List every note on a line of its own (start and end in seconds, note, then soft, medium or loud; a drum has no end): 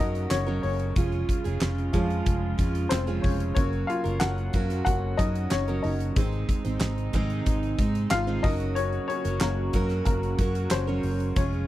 0.00 0.25 F#2 medium
0.00 6.12 C#3 medium
0.00 0.47 F#3 medium
0.00 0.94 F#3 medium
0.00 0.98 F#3 medium
0.00 0.94 A#3 medium
0.00 0.98 A#3 medium
0.00 0.32 C#4 medium
0.00 0.47 C#4 medium
0.00 0.29 D#4 medium
0.00 0.98 F4 medium
0.00 0.46 F#4 medium
0.00 0.98 F#4 medium
0.00 0.45 A#4 medium
0.00 0.30 C#5 medium
0.00 0.31 D#5 loud
0.00 0.98 F5 loud
0.00 0.98 F#5 medium
0.15 closed hi-hat medium
0.30 0.58 F#1 medium
0.30 0.62 C#4 medium
0.30 0.61 C#5 medium
0.30 snare loud
0.30 clap loud
0.30 closed hi-hat loud
0.46 0.95 F#3 medium
0.46 0.95 C#4 medium
0.46 0.96 F#4 medium
0.46 0.96 A#4 medium
0.62 0.91 F#1 medium
0.62 1.90 C#4 medium
0.62 1.89 C#5 medium
0.62 open hi-hat medium
0.80 closed hi-hat medium
0.96 1.23 F1 loud
0.96 1.45 G#3 medium
0.96 3.53 G#3 medium
0.96 1.45 C#4 medium
0.96 3.54 F4 medium
0.96 1.45 F4 medium
0.96 1.43 G#4 medium
0.96 kick loud
0.96 closed hi-hat medium
1.12 closed hi-hat soft
1.29 kick medium
1.29 closed hi-hat medium
1.44 1.59 F1 medium
1.44 1.93 C#4 soft
1.44 1.94 F4 soft
1.44 1.93 G#4 medium
1.44 closed hi-hat medium
1.61 1.88 F1 medium
1.61 snare loud
1.61 clap medium
1.61 closed hi-hat medium
1.78 closed hi-hat soft
1.93 2.21 F2 medium
1.93 2.87 F3 medium
1.93 2.59 F3 medium
1.93 2.87 G#3 soft
1.93 2.56 G#3 medium
1.93 2.87 C#4 medium
1.93 2.58 C#4 medium
1.93 2.59 F4 medium
1.93 2.59 G#4 loud
1.93 kick medium
1.93 closed hi-hat medium
2.10 closed hi-hat soft
2.26 2.53 F1 medium
2.26 kick loud
2.26 closed hi-hat medium
2.58 2.86 F2 medium
2.58 3.07 G#3 medium
2.58 3.07 C#4 medium
2.58 3.06 F4 medium
2.58 3.06 G#4 medium
2.58 kick medium
2.58 closed hi-hat medium
2.75 closed hi-hat medium
2.89 3.18 F1 medium
2.89 3.22 C4 medium
2.89 3.20 C5 medium
2.89 snare loud
2.89 clap loud
2.89 closed hi-hat medium
3.07 3.57 F3 medium
3.07 3.55 G#3 medium
3.07 3.55 C#4 medium
3.07 3.56 F4 medium
3.07 3.56 G#4 medium
3.07 closed hi-hat soft
3.22 3.51 F1 medium
3.22 3.54 C#4 medium
3.22 3.53 C#5 medium
3.22 kick medium
3.22 open hi-hat medium
3.40 closed hi-hat medium
3.55 3.83 F#1 loud
3.55 4.05 F#3 medium
3.55 4.50 F#3 medium
3.55 6.14 F#3 medium
3.55 4.50 A#3 soft
3.55 6.14 A#3 medium
3.55 4.05 C#4 medium
3.55 3.87 C#4 medium
3.55 4.04 F#4 medium
3.55 4.03 A#4 medium
3.55 3.89 C#5 medium
3.55 kick loud
3.55 closed hi-hat medium
3.73 closed hi-hat soft
3.87 4.19 F4 medium
3.87 4.22 F5 medium
3.87 closed hi-hat medium
4.04 4.19 F#1 medium
4.04 4.53 C#4 soft
4.04 4.54 F#4 soft
4.04 4.53 A#4 medium
4.04 closed hi-hat medium
4.20 4.48 F#1 loud
4.20 4.83 F#4 medium
4.20 4.83 F#5 medium
4.20 snare loud
4.20 clap medium
4.20 closed hi-hat medium
4.38 closed hi-hat soft
4.53 4.81 F#2 medium
4.53 5.17 F#3 medium
4.53 5.18 C#4 medium
4.53 5.19 F#4 medium
4.53 5.20 A#4 loud
4.53 kick medium
4.53 closed hi-hat medium
4.70 snare soft
4.70 closed hi-hat soft
4.85 5.13 F#1 medium
4.85 5.15 F#3 soft
4.85 5.15 A#3 soft
4.85 5.16 C#4 soft
4.85 5.17 F#4 medium
4.85 5.19 F#5 medium
4.85 kick medium
4.85 closed hi-hat medium
5.17 5.46 F#2 loud
5.17 5.67 F#3 medium
5.17 5.68 C#4 medium
5.17 5.49 D#4 medium
5.17 5.68 F#4 medium
5.17 5.67 A#4 medium
5.17 5.52 D#5 medium
5.17 kick medium
5.17 closed hi-hat medium
5.35 closed hi-hat medium
5.50 5.79 F#1 medium
5.50 5.82 C#4 medium
5.50 5.84 C#5 medium
5.50 snare loud
5.50 clap loud
5.50 closed hi-hat medium
5.68 6.15 F#3 medium
5.68 6.17 C#4 medium
5.68 6.17 F#4 medium
5.68 6.17 A#4 medium
5.68 closed hi-hat soft
5.82 6.11 F#1 loud
5.82 7.10 D#4 medium
5.82 7.09 D#5 medium
5.82 open hi-hat medium
6.00 closed hi-hat medium
6.16 6.43 G#1 loud
6.16 8.42 C3 medium
6.16 7.09 D#3 soft
6.16 6.65 G#3 medium
6.16 7.10 G#3 soft
6.16 8.42 G#3 medium
6.16 7.10 C4 medium
6.16 6.65 C4 medium
6.16 8.42 D#4 medium
6.16 6.64 D#4 medium
6.16 6.63 C5 medium
6.16 kick loud
6.16 closed hi-hat loud
6.33 closed hi-hat soft
6.49 kick medium
6.49 closed hi-hat medium
6.64 6.79 G#1 medium
6.64 7.13 G#3 soft
6.64 7.14 C4 medium
6.64 7.14 D#4 medium
6.64 7.14 C5 medium
6.64 closed hi-hat medium
6.80 7.08 G#1 medium
6.80 snare loud
6.80 clap medium
6.80 closed hi-hat medium
6.98 closed hi-hat soft
7.13 7.79 G#2 medium
7.13 7.40 G#2 medium
7.13 7.79 D#3 medium
7.13 7.77 G#3 medium
7.13 7.78 C4 loud
7.13 7.79 D#4 medium
7.13 7.80 C5 loud
7.13 kick medium
7.13 closed hi-hat medium
7.30 closed hi-hat soft
7.46 7.73 G#1 loud
7.46 kick medium
7.46 closed hi-hat medium
7.63 closed hi-hat soft
7.78 8.05 G#2 loud
7.78 8.27 G#3 medium
7.78 8.27 C4 medium
7.78 8.26 D#4 medium
7.78 8.26 C5 medium
7.78 kick medium
7.78 closed hi-hat medium
7.95 closed hi-hat medium
8.10 8.38 G#1 medium
8.10 8.42 F4 medium
8.10 8.44 F5 loud
8.10 snare loud
8.10 clap loud
8.10 closed hi-hat medium
8.27 8.45 G#2 medium
8.27 8.44 D#3 medium
8.27 8.43 G#3 medium
8.27 8.44 C4 medium
8.27 8.44 D#4 medium
8.27 8.44 C5 medium
8.43 8.97 F#1 medium
8.43 11.67 C#3 medium
8.43 8.87 F#3 medium
8.43 9.25 F#3 medium
8.43 11.33 A#3 medium
8.43 8.87 A#3 soft
8.43 8.76 C#4 medium
8.43 9.27 C#4 medium
8.43 8.75 D#4 medium
8.43 11.34 F#4 medium
8.43 9.25 F#4 medium
8.43 9.23 A#4 medium
8.43 8.77 D#5 medium
8.43 kick loud
8.43 open hi-hat medium
8.60 closed hi-hat medium
8.75 9.07 C#4 medium
8.75 9.06 C#5 medium
8.75 closed hi-hat medium
8.93 closed hi-hat soft
9.08 9.39 C#4 medium
9.08 9.42 C#5 loud
9.08 closed hi-hat medium
9.24 9.39 F#1 medium
9.24 9.73 C#4 soft
9.24 9.74 F#4 soft
9.24 9.74 A#4 medium
9.24 closed hi-hat medium
9.40 9.68 F#1 medium
9.40 9.70 F#3 soft
9.40 10.03 A#3 medium
9.40 9.71 C#4 medium
9.40 10.04 A#4 medium
9.40 snare loud
9.40 clap loud
9.40 closed hi-hat medium
9.73 10.00 F#2 medium
9.73 10.37 F#3 medium
9.73 10.39 C#4 medium
9.73 10.39 F#4 loud
9.73 10.40 A#4 loud
9.73 kick medium
9.73 closed hi-hat medium
9.89 snare soft
9.89 closed hi-hat soft
10.05 10.33 F#1 loud
10.05 10.68 A#3 medium
10.05 10.73 A#4 medium
10.05 kick medium
10.05 closed hi-hat medium
10.23 closed hi-hat soft
10.38 10.66 F#2 loud
10.38 10.87 F#3 medium
10.38 10.88 C#4 medium
10.38 10.87 F#4 medium
10.38 10.86 A#4 medium
10.38 kick medium
10.38 closed hi-hat medium
10.55 closed hi-hat medium
10.70 10.98 F#1 medium
10.70 11.33 C#4 medium
10.70 11.38 C5 medium
10.70 snare loud
10.70 clap loud
10.70 closed hi-hat loud
10.87 11.35 F#3 medium
10.87 11.36 C#4 medium
10.87 11.37 F#4 medium
10.87 11.36 A#4 medium
11.03 11.31 F#1 medium
11.03 open hi-hat medium
11.20 closed hi-hat medium
11.36 11.63 F1 loud
11.36 11.67 G#3 medium
11.36 11.67 C#4 medium
11.36 11.67 F4 medium
11.36 11.67 G#4 medium
11.36 11.67 C#5 medium
11.36 kick loud
11.36 closed hi-hat medium
11.53 closed hi-hat soft